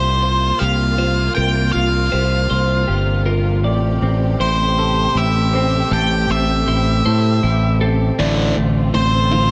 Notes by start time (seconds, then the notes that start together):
Already playing: C2 C3 A#3 F4 G4 C5
0.22 C5
0.59 C2 G4 F5
0.98 F4 C5
1.35 C2 C3 A#4 G5
1.72 C2 F4 F5
2.12 C2 G4 C5
2.50 C2 C5
2.88 G1 G4
3.25 F4 A#4
3.64 A1 A2 A3 G4 D5
4.02 A1 C4
4.40 A1 E4 C5
4.79 A4
5.15 A1 E4 E5
5.54 C4 C5
5.91 A1 A2 A4 G5
6.29 A1 C4 E5
6.68 A1 E4 C5
7.05 A2 A4 C5
7.43 A1 E4
7.81 C4 A4
8.18 A1 D2 A2 D3 C4 F4 D5
8.56 A1 D2 A2 A3
8.94 A1 D2 A2 C4 C5
9.31 D2 A2 F4